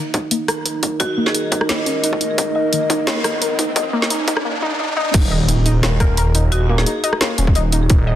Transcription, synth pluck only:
Already playing: D#3
0.14 D#4
0.31 A#3
0.48 A#4
0.66 A#4
0.83 D#4
1.00 D#5
1.17 A#3
1.35 D#4
1.52 D#4
1.69 A#3
1.86 C#4
2.04 D#4
2.21 D#4
2.38 D#4
2.55 D#5
2.73 D#3
2.90 D#4
3.07 A#3
3.24 A#4
3.42 A#4
3.59 D#4
3.76 D#5
3.93 A#3
4.11 D#4
4.28 D#4
4.45 A#3
4.62 D#4
4.79 D#4
4.97 D#4
5.14 D#4
5.31 D#5
5.49 D#3
5.66 D#4
5.83 A#3
6.00 A#4
6.18 A#4
6.35 D#4
6.52 D#5
6.69 A#3
6.87 D#4
7.04 D#4
7.21 A#3
7.38 C#4
7.55 D#4
7.73 D#4
7.90 D#4
8.07 D#5

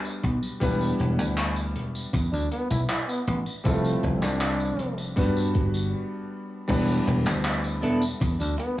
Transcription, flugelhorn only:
2.33 D4
2.51 B3
2.70 E4
2.89 E4
3.08 B3
3.27 B3
3.65 A3
4.22 D4
8.40 D4
8.59 B3

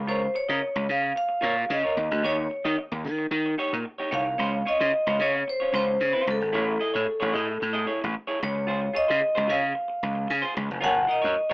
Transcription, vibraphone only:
0.09 C5
0.36 C#5
0.91 F5
1.17 F5
1.72 D#5
2.26 C#5
4.14 F5
4.68 D#5
5.22 C#5
5.49 C5
5.76 C5
6.31 A4
8.44 C#5
8.96 D#5
9.50 F5
10.30 G#5
10.84 F#5
11.11 D#5

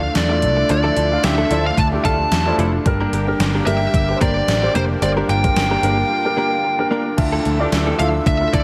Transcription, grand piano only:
Already playing: D3 A3 D4 E4 F4 C5 D5
0.30 A3 D4 E4 F4 E5
0.69 D3 A3 D4 E4 F4 D5
1.12 A3 D4 E4 F4 F5
1.51 A3 D4 E4 F4 D5
1.92 A3 D4 E4 F4 G4
2.46 A3 D4 E4 F4 D5
2.86 G2 D4 G4 A#4
3.27 D4 G4 A#4
3.66 D4 G4 A#4
4.09 D4 G4 B4
4.16 C5
4.62 D4 G4 C5
5.02 G2 D4 G4 C5
5.43 D4 G4 A#4
5.83 D4 G4 A#4
6.25 D4 G4 A#4
6.79 D4 G4 A#4
7.17 D3 D4 E4 F4 A4 E5
7.59 D4 E4 F4 A4 D5
7.98 D4 E4 F4 A4 E5
8.41 D4 E4 F4 A4 E5

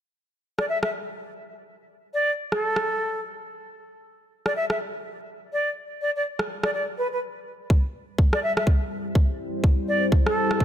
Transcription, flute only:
0.59 D5
0.68 E5
0.83 E5
2.13 D5
2.52 A4
4.46 D5
4.56 E5
4.70 E5
5.52 D5
6.01 D5
6.15 D5
6.63 D5
6.73 D5
6.98 B4
7.12 B4
8.33 D5
8.43 E5
8.57 E5
9.88 D5
10.27 A4

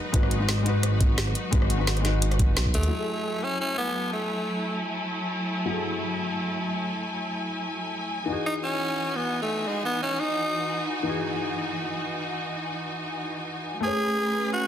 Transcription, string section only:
Already playing: F#3 D#4 F#4 B4
2.91 F#3 A3 E4 G#5
8.29 E3 D#4 F#4
13.84 A3 C#4 G#4 B4

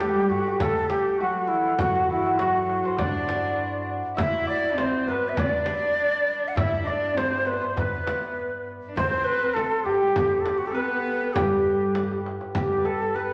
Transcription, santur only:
Already playing: A4 B4
0.01 G4
0.09 G4
0.16 G4
0.23 G4
0.31 G4
0.39 G4
0.47 G4
0.61 A4
0.83 A4
0.91 G4
1.20 F#4
1.80 F#4
1.87 F#4
1.95 F#4
2.03 F#4
2.10 F#4
2.18 F#4
2.26 F#4
2.34 E4
2.41 F#4
2.85 C5
2.99 D5
4.17 E5
4.47 D5
4.78 C5
5.08 B4
5.39 D5
6.57 E5
6.87 D5
7.17 C5
7.25 C5
7.31 C5
7.40 C5
7.46 C5
7.53 C5
7.61 C5
7.76 B4
8.97 C5
9.04 C5
9.11 C5
9.18 C5
9.25 C5
9.33 C5
9.41 C5
9.56 A4
9.86 G4
9.94 G4
10.02 G4
10.08 G4
10.16 G4
10.24 G4
10.67 A4
10.74 B4
11.36 G4
12.55 G4
12.78 B4
12.85 A4
13.16 B4

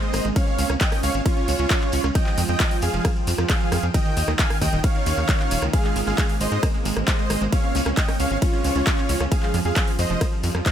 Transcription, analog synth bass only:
0.14 G#1
0.25 G#1
0.58 C#2
0.70 C#2
1.03 C#2
1.14 G#1
1.48 C#2
1.59 C#2
1.93 C#2
2.04 C#2
2.38 F2
2.49 F2
2.82 F2
2.94 F1
3.27 F2
3.38 F2
3.72 F2
3.83 F2
4.17 D#2
4.28 D#2
4.62 D#2
4.73 D#1
5.06 D#2
5.18 D#2
5.51 D#1
5.62 C#2
5.96 G#1
6.07 G#1
6.41 G#1
6.52 G#2
6.85 G#1
6.97 G#1
7.30 G#1
7.41 G#1
7.75 C#2
7.86 C#2
8.20 C#2
8.31 G#1
8.64 C#2
8.76 C#2
9.09 C#2
9.20 C#2
9.54 F2
9.65 F2
9.99 F2
10.10 F1
10.43 F2
10.55 F2

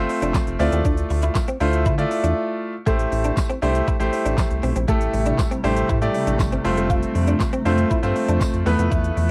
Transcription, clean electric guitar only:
0.10 muted clean electric guitar stroke
0.22 D4
0.35 muted clean electric guitar stroke
0.60 C4
0.73 C4
0.85 D4
1.10 muted clean electric guitar stroke
1.23 E4
1.36 muted clean electric guitar stroke
1.48 C4
1.61 D4
1.86 E4
2.11 muted clean electric guitar stroke
2.24 D4
2.87 A3
3.12 muted clean electric guitar stroke
3.25 D4
3.37 muted clean electric guitar stroke
3.50 C4
3.62 D4
3.88 E4
4.13 muted clean electric guitar stroke
4.25 D4
4.38 muted clean electric guitar stroke
4.63 C4
4.76 C4
4.88 A3
5.13 muted clean electric guitar stroke
5.26 D4
5.39 muted clean electric guitar stroke
5.51 C4
5.64 D4
5.89 E4
6.15 muted clean electric guitar stroke
6.27 D4
6.52 C4
6.65 muted clean electric guitar stroke
6.77 A3
6.90 F4
7.15 muted clean electric guitar stroke
7.28 D4
7.40 muted clean electric guitar stroke
7.53 C4
7.66 D4
7.91 E4
8.16 muted clean electric guitar stroke
8.29 D4
8.41 muted clean electric guitar stroke
8.66 B3
8.79 B3
8.92 E4
9.17 muted clean electric guitar stroke

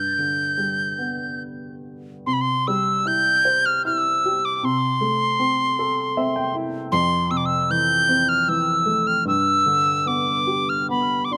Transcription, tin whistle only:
Already playing: G6
2.26 C6
2.33 B5
2.41 C6
2.67 E6
3.07 G6
3.66 F6
3.86 E6
4.45 D6
4.56 D6
4.65 C6
6.92 C6
7.31 E6
7.37 D6
7.46 E6
7.71 G6
8.29 F6
8.49 E6
9.07 F6
9.28 E6
10.07 D6
10.69 F6
10.90 B5
11.25 D6
11.33 C6

